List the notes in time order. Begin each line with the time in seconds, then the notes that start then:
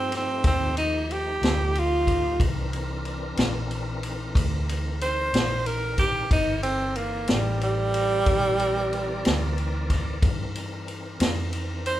Already playing: G2 F3 A3 C4 D#4 G4
0.12 snare, ride
0.16 C4
0.44 D#2 C4, kick, ride
0.77 D#4, ride
1.11 G4, ride
1.42 D2, snare, ride
1.75 F4, ride
2.07 kick, ride
2.39 C2 E3 C4 D4 A#4, kick, ride
2.73 ride
3.05 ride
3.37 A#1, snare, ride
3.71 ride
4.03 ride
4.35 D2, kick, ride
4.69 ride
5.01 C5, ride
5.33 A#1, snare, ride
5.66 A#4, ride
5.98 G4, kick, snare, ride
6.31 G1 E3 C4 D#4 A#4 D5, kick, ride
6.63 C4, ride
6.96 A#3, ride
7.28 A1 G3, snare, ride
7.61 G3, ride
7.94 ride
8.26 A#1, kick, ride
8.60 ride
8.93 ride
9.25 D2, snare, ride
9.58 ride
9.90 kick, snare, ride
10.22 G2 E3 C4 D4 A#4, kick, ride
10.56 ride
10.88 ride
11.20 F2, snare, ride
11.53 ride
11.86 C5, ride